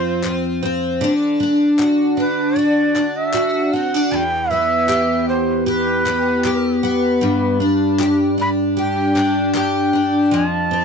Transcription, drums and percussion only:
0.24 clap
1.79 clap
2.96 clap
3.34 clap
4.89 clap
6.06 clap
6.44 clap
7.99 clap
9.17 clap
9.55 clap

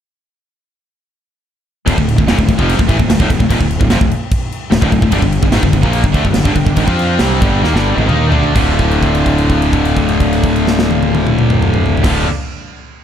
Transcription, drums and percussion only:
1.88 kick, crash
1.98 kick
2.08 crash
2.18 kick
2.28 snare, crash
2.39 kick
2.48 kick, crash
2.59 kick
2.69 crash
2.79 kick
2.89 kick, crash
2.99 kick
3.10 snare, crash
3.20 kick
3.30 kick, crash
3.40 kick
3.50 kick, crash
3.61 kick
3.71 crash
3.81 kick
3.90 snare, crash
4.01 kick
4.11 crash
4.31 kick, crash
4.52 crash
4.72 snare, crash
4.82 kick
4.92 kick, crash
5.02 kick
5.12 kick, crash
5.22 kick
5.32 crash
5.43 kick
5.52 snare, crash
5.63 kick
5.73 kick, crash
5.83 kick
5.93 crash
6.04 kick
6.14 kick, crash
6.25 kick
6.34 snare, crash
6.45 kick
6.55 kick, crash
6.66 kick
6.76 kick, crash
6.88 kick
6.99 crash
7.19 snare, crash
7.42 kick, crash
7.64 snare
7.76 snare
7.98 high tom
8.09 mid tom
8.32 floor tom
8.44 floor tom
8.56 kick, crash
8.79 kick, crash
8.91 crash
9.03 kick, crash
9.15 crash
9.26 kick, crash
9.38 crash
9.50 kick, crash
9.62 crash
9.73 kick, crash
9.85 crash
9.97 kick, crash
10.08 crash
10.20 kick, crash
10.33 crash
10.43 kick, crash
10.56 crash
10.67 snare
10.79 snare
10.91 high tom
11.03 high tom
11.15 high tom
11.27 mid tom
11.39 mid tom
11.50 mid tom
11.62 mid tom
11.74 mid tom
11.86 floor tom
11.97 floor tom
12.04 kick, snare, crash

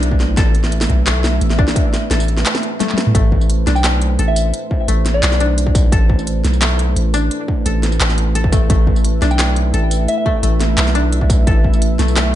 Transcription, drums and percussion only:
0.03 closed hi-hat
0.12 kick
0.20 snare
0.37 kick, snare, closed hi-hat
0.55 closed hi-hat
0.64 snare
0.72 closed hi-hat
0.81 snare, tambourine
0.89 kick, closed hi-hat
1.07 clap, snare, closed hi-hat
1.24 snare, tambourine
1.41 closed hi-hat
1.50 snare
1.59 kick
1.68 snare
1.76 kick, closed hi-hat
1.94 snare, closed hi-hat, tambourine
2.11 snare, closed hi-hat
2.20 tambourine
2.28 closed hi-hat
2.37 snare
2.46 clap, closed hi-hat
2.55 snare
2.63 closed hi-hat
2.80 snare, closed hi-hat, high tom
2.89 clap
2.94 high tom
2.98 snare, closed hi-hat
3.07 mid tom
3.15 kick, closed hi-hat
3.32 kick
3.41 tambourine
3.50 closed hi-hat
3.67 snare, closed hi-hat, tambourine
3.76 tambourine
3.84 clap, snare, closed hi-hat
4.02 closed hi-hat
4.19 closed hi-hat
4.36 closed hi-hat, tambourine
4.54 closed hi-hat
4.71 kick
4.88 closed hi-hat
5.06 snare, closed hi-hat
5.23 clap, closed hi-hat
5.32 snare
5.40 closed hi-hat
5.58 closed hi-hat
5.67 kick
5.75 kick, closed hi-hat, tambourine
5.92 kick, closed hi-hat
6.10 kick
6.19 tambourine
6.27 closed hi-hat
6.45 snare, closed hi-hat, tambourine
6.53 tambourine
6.62 clap, snare, closed hi-hat
6.79 closed hi-hat
6.96 closed hi-hat
7.14 closed hi-hat, tambourine
7.31 closed hi-hat
7.48 kick
7.66 closed hi-hat
7.83 snare, closed hi-hat
7.92 tambourine
8.01 clap, closed hi-hat
8.10 snare
8.18 closed hi-hat
8.35 closed hi-hat
8.44 kick
8.52 kick, closed hi-hat, tambourine
8.70 kick, closed hi-hat
8.87 kick
8.96 tambourine
9.04 closed hi-hat
9.22 snare, closed hi-hat, tambourine
9.31 tambourine
9.39 clap, snare, closed hi-hat
9.56 closed hi-hat
9.74 closed hi-hat
9.91 closed hi-hat, tambourine
10.08 closed hi-hat
10.26 kick
10.43 closed hi-hat
10.61 snare, closed hi-hat
10.78 clap, closed hi-hat
10.87 snare
10.95 closed hi-hat
11.12 closed hi-hat
11.21 kick
11.30 kick, closed hi-hat, tambourine
11.47 kick, closed hi-hat
11.64 kick
11.73 tambourine
11.82 closed hi-hat
11.99 snare, closed hi-hat, tambourine
12.08 tambourine
12.17 clap, snare, closed hi-hat

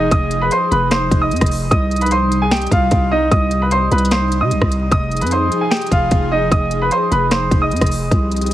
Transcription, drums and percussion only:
0.11 kick, closed hi-hat
0.31 closed hi-hat
0.51 closed hi-hat
0.72 closed hi-hat
0.91 finger snap, cross-stick, snare, closed hi-hat
1.11 kick, closed hi-hat
1.31 closed hi-hat
1.36 closed hi-hat
1.41 kick, cross-stick, closed hi-hat
1.46 closed hi-hat
1.51 open hi-hat
1.71 kick, closed hi-hat
1.91 closed hi-hat
1.96 closed hi-hat
2.01 closed hi-hat
2.06 closed hi-hat
2.11 closed hi-hat
2.32 closed hi-hat
2.51 finger snap, snare, closed hi-hat
2.56 closed hi-hat
2.61 closed hi-hat
2.67 closed hi-hat
2.71 kick, closed hi-hat
2.91 kick, closed hi-hat
3.31 kick, closed hi-hat
3.51 closed hi-hat
3.71 closed hi-hat
3.92 closed hi-hat
3.98 closed hi-hat
4.05 closed hi-hat
4.11 finger snap, snare, closed hi-hat
4.32 closed hi-hat
4.51 closed hi-hat
4.61 kick, cross-stick
4.72 closed hi-hat
4.92 kick, closed hi-hat
5.12 closed hi-hat
5.17 closed hi-hat
5.21 closed hi-hat
5.27 closed hi-hat
5.31 closed hi-hat
5.52 closed hi-hat
5.71 finger snap, snare, closed hi-hat
5.76 closed hi-hat
5.81 closed hi-hat
5.87 closed hi-hat
5.91 kick, closed hi-hat
6.11 kick, closed hi-hat
6.51 kick, closed hi-hat
6.71 closed hi-hat
6.91 closed hi-hat
7.12 closed hi-hat
7.31 finger snap, cross-stick, snare, closed hi-hat
7.51 kick, closed hi-hat
7.71 closed hi-hat
7.76 closed hi-hat
7.81 kick, cross-stick, closed hi-hat
7.86 closed hi-hat
7.91 open hi-hat
8.11 kick, closed hi-hat
8.31 closed hi-hat
8.36 closed hi-hat
8.41 closed hi-hat
8.46 closed hi-hat

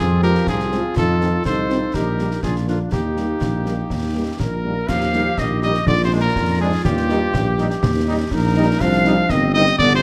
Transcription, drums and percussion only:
0.22 snare
0.35 snare
0.47 concert bass drum, snare
0.60 snare
0.72 snare
0.96 concert bass drum, snare, crash
1.21 snare
1.45 concert bass drum, snare
1.70 snare
1.94 concert bass drum, snare
2.19 snare
2.31 snare
2.43 concert bass drum, snare
2.56 snare
2.68 snare
2.92 concert bass drum, snare
3.17 snare
3.41 concert bass drum, snare
3.66 snare
3.90 concert bass drum, snare
4.40 concert bass drum, snare
4.89 concert bass drum, snare, crash
5.01 snare
5.13 snare
5.38 concert bass drum, snare
5.62 snare
5.74 snare
5.87 concert bass drum, snare
6.36 concert bass drum, snare
6.85 concert bass drum, snare
6.97 snare
7.09 snare
7.34 concert bass drum, snare
7.58 snare
7.70 snare
7.83 concert bass drum, snare
8.31 concert bass drum, snare
8.80 concert bass drum, snare, crash
8.93 snare
9.05 snare
9.30 concert bass drum, snare
9.54 snare
9.66 snare
9.79 concert bass drum, snare

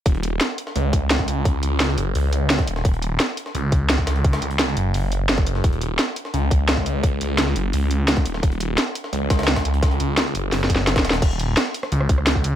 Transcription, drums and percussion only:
0.06 kick, closed hi-hat
0.15 closed hi-hat
0.23 closed hi-hat
0.41 snare, closed hi-hat
0.58 closed hi-hat
0.67 snare
0.76 closed hi-hat
0.93 kick, closed hi-hat
1.10 snare, closed hi-hat
1.19 kick
1.28 closed hi-hat
1.45 kick, closed hi-hat
1.63 closed hi-hat
1.80 snare, closed hi-hat
1.89 snare
1.98 closed hi-hat
2.15 closed hi-hat, open hi-hat
2.33 closed hi-hat
2.50 snare, closed hi-hat
2.59 kick, closed hi-hat
2.67 closed hi-hat
2.76 snare
2.85 kick, closed hi-hat
2.94 closed hi-hat
3.02 closed hi-hat
3.20 snare, closed hi-hat
3.37 closed hi-hat
3.46 snare
3.55 closed hi-hat
3.72 kick, closed hi-hat
3.90 snare, closed hi-hat
3.98 kick
4.07 snare, closed hi-hat
4.16 closed hi-hat
4.24 kick, closed hi-hat
4.33 snare, closed hi-hat
4.42 closed hi-hat
4.51 closed hi-hat
4.59 snare, closed hi-hat
4.68 snare
4.77 closed hi-hat
4.94 closed hi-hat, open hi-hat
5.12 closed hi-hat
5.29 snare, closed hi-hat
5.38 kick
5.47 closed hi-hat
5.55 snare
5.64 kick, closed hi-hat
5.73 closed hi-hat
5.81 closed hi-hat
5.99 snare, closed hi-hat
6.16 closed hi-hat
6.25 snare
6.34 closed hi-hat
6.51 kick, closed hi-hat
6.69 snare, closed hi-hat
6.77 kick
6.86 closed hi-hat
7.03 kick, closed hi-hat
7.21 closed hi-hat
7.38 snare, closed hi-hat
7.47 snare
7.56 closed hi-hat
7.73 closed hi-hat, open hi-hat
7.91 closed hi-hat
8.08 snare, closed hi-hat
8.17 kick, closed hi-hat
8.25 closed hi-hat
8.34 snare
8.43 kick, closed hi-hat
8.52 closed hi-hat
8.60 closed hi-hat
8.78 snare, closed hi-hat
8.95 closed hi-hat
9.04 snare
9.13 closed hi-hat
9.30 kick, snare, closed hi-hat
9.39 snare, closed hi-hat
9.43 snare, closed hi-hat
9.48 snare, closed hi-hat
9.56 kick, snare, closed hi-hat
9.65 closed hi-hat
9.74 closed hi-hat
9.83 kick, snare, closed hi-hat
9.91 closed hi-hat
10.00 closed hi-hat
10.17 snare, closed hi-hat
10.26 snare
10.35 closed hi-hat
10.52 snare, closed hi-hat, open hi-hat
10.64 snare
10.70 kick, closed hi-hat
10.76 snare
10.87 snare, closed hi-hat
10.96 kick, snare, closed hi-hat
10.99 snare
11.05 snare, closed hi-hat
11.10 snare
11.13 snare, closed hi-hat
11.22 kick, closed hi-hat, crash
11.31 closed hi-hat
11.40 closed hi-hat
11.57 snare, closed hi-hat
11.74 closed hi-hat
11.83 cross-stick, snare
11.92 closed hi-hat
12.01 cross-stick
12.09 kick, closed hi-hat
12.18 cross-stick
12.27 snare, closed hi-hat
12.35 kick
12.44 closed hi-hat

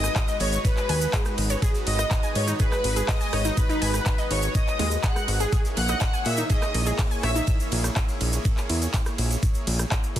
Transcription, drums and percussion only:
0.04 cross-stick, snare, closed hi-hat, shaker
0.16 kick, snare, clap, closed hi-hat, ride, shaker
0.28 snare, closed hi-hat, shaker
0.40 open hi-hat, ride
0.53 closed hi-hat, shaker
0.65 kick, closed hi-hat, ride, shaker
0.77 clap, shaker
0.89 open hi-hat, ride
1.01 closed hi-hat, shaker
1.13 kick, snare, clap, closed hi-hat, ride, shaker
1.25 cross-stick, snare, closed hi-hat, shaker
1.38 open hi-hat, ride
1.49 closed hi-hat, ride, shaker
1.62 kick, closed hi-hat, ride, shaker
1.74 snare, closed hi-hat, shaker
1.87 open hi-hat, ride
1.99 cross-stick, snare, closed hi-hat, shaker
2.11 kick, snare, clap, closed hi-hat, ride, shaker
2.23 closed hi-hat, shaker
2.35 open hi-hat, ride
2.48 closed hi-hat, shaker
2.60 kick, closed hi-hat, ride, shaker
2.72 cross-stick, clap, shaker
2.84 open hi-hat, ride
2.96 closed hi-hat, shaker
3.09 kick, snare, clap, closed hi-hat, open hi-hat, ride, shaker
3.20 closed hi-hat, shaker
3.33 cross-stick, snare, open hi-hat, ride
3.45 snare, closed hi-hat, shaker
3.57 kick, closed hi-hat, ride, shaker
3.70 closed hi-hat, shaker
3.82 open hi-hat, ride
3.94 cross-stick, snare, closed hi-hat, shaker
4.06 kick, snare, clap, closed hi-hat, ride, shaker
4.18 snare, closed hi-hat, shaker
4.31 open hi-hat, ride
4.42 closed hi-hat, shaker
4.55 kick, closed hi-hat, ride, shaker
4.67 clap, shaker
4.79 open hi-hat, ride
4.91 closed hi-hat, shaker
5.03 kick, snare, clap, closed hi-hat, ride, shaker
5.16 cross-stick, snare, closed hi-hat, shaker
5.28 open hi-hat, ride
5.40 closed hi-hat, ride, shaker
5.52 kick, closed hi-hat, ride, shaker
5.65 snare, closed hi-hat, shaker
5.77 open hi-hat, ride
5.89 cross-stick, snare, closed hi-hat, shaker
6.00 kick, snare, clap, closed hi-hat, ride, shaker
6.14 closed hi-hat, shaker
6.25 open hi-hat, ride
6.37 closed hi-hat, shaker
6.49 kick, closed hi-hat, ride, shaker
6.62 cross-stick, clap, shaker
6.74 open hi-hat, ride
6.86 closed hi-hat, shaker
6.99 kick, snare, clap, closed hi-hat, open hi-hat, ride, shaker
7.11 closed hi-hat, shaker
7.23 cross-stick, snare, open hi-hat, ride
7.36 snare, closed hi-hat, shaker
7.47 kick, closed hi-hat, ride, shaker
7.60 closed hi-hat, shaker
7.72 open hi-hat, ride
7.84 cross-stick, snare, closed hi-hat, shaker
7.96 kick, snare, clap, closed hi-hat, ride, shaker
8.08 snare, closed hi-hat, shaker
8.21 open hi-hat, ride
8.33 closed hi-hat, shaker
8.45 kick, closed hi-hat, ride, shaker
8.57 clap, shaker
8.69 open hi-hat, ride
8.82 closed hi-hat, shaker
8.93 kick, snare, clap, closed hi-hat, ride, shaker
9.06 cross-stick, snare, closed hi-hat, shaker
9.18 open hi-hat, ride
9.31 closed hi-hat, ride, shaker
9.43 kick, closed hi-hat, ride, shaker
9.54 closed hi-hat, shaker
9.67 open hi-hat, ride
9.79 cross-stick, closed hi-hat, shaker
9.92 kick, clap, closed hi-hat, ride, shaker
10.04 closed hi-hat, shaker
10.16 open hi-hat, ride

